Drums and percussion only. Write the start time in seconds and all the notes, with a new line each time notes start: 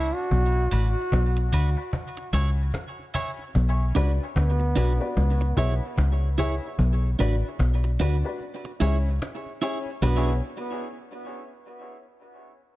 0.15 cajon slap
0.31 cajon bass
0.56 cajon slap
0.72 cajon bass
0.95 cajon slap
1.12 cajon bass, cajon slap
1.37 cajon slap
1.52 cajon bass
1.78 cajon slap
1.93 cajon bass
2.17 cajon slap
2.33 cajon bass
2.58 cajon slap
2.74 cajon bass, cajon slap
2.99 cajon slap
3.15 cajon bass
3.39 cajon slap
3.55 cajon bass
3.80 cajon slap
3.96 cajon bass
4.20 cajon slap
4.36 cajon bass, cajon slap
4.61 cajon slap
4.76 cajon bass
5.01 cajon slap
5.17 cajon bass
5.41 cajon slap
5.57 cajon bass
5.82 cajon slap
5.98 cajon bass, cajon slap
6.22 cajon slap
6.38 cajon bass
6.62 cajon slap
6.79 cajon bass
7.03 cajon slap
7.19 cajon bass
7.43 cajon slap
7.59 cajon bass, cajon slap
7.83 cajon slap
8.00 cajon bass
8.24 cajon slap
8.41 cajon slap
8.64 cajon slap
8.82 cajon slap
9.05 cajon slap
9.22 cajon slap
9.46 cajon slap
9.86 cajon slap
10.02 cajon bass